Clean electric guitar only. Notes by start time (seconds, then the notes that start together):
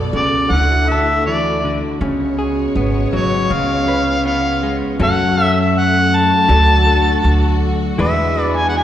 Already playing: B2 B3 D5
0.16 C#3
0.53 D3
0.92 A4
1.27 E3
1.65 D3
2.01 C#3
2.39 G#4
2.77 B3
3.13 F#3
3.50 C#3
3.88 B4
4.25 B3
4.63 G#3
5.00 F#2 F#3 C#4 F#4 A4
5.38 A4
6.48 D3 F#3 D4 F#4 A4
6.87 A4
7.98 E3 G#3 D4 B4
8.39 B4